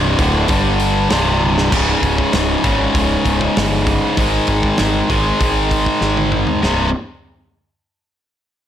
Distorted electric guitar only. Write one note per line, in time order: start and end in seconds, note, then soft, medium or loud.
0.00 0.17 C2 medium
0.00 0.18 G2 loud
0.00 0.18 C3 loud
0.18 0.47 D2 medium
0.18 0.48 A2 medium
0.18 0.48 D3 medium
0.48 1.09 G2 medium
0.48 1.10 D3 medium
0.48 1.10 G3 medium
1.10 1.71 C2 medium
1.10 1.71 G2 loud
1.10 1.72 C3 loud
1.71 2.62 C#2 medium
1.71 2.63 G#2 medium
1.71 2.63 C#3 loud
2.64 4.17 C#2 medium
2.64 4.16 G#2 medium
2.64 4.16 C#3 medium
4.18 5.08 G#2 medium
4.18 5.09 D#3 medium
4.18 5.09 G#3 medium
5.10 6.62 G#2 medium
5.10 6.62 D#3 medium
5.10 6.61 G#3 medium
6.63 6.88 C2 medium
6.63 6.88 G2 medium
6.63 6.88 C3 medium